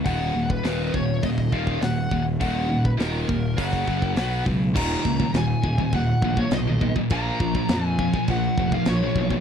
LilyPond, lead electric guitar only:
\new Staff \with { instrumentName = "Lead electric guitar" } { \time 4/4 \key ees \minor \tempo 4 = 102 ges''8. ces''8. des''8 ees''8 f''8 ges''8. r16 | ges''8. ces''16 bes'4 ges''4. r8 | bes''4 aes''4 ges''8. des''16 ees''8. r16 | bes''4 aes''4 ges''8. f''16 des''8. r16 | }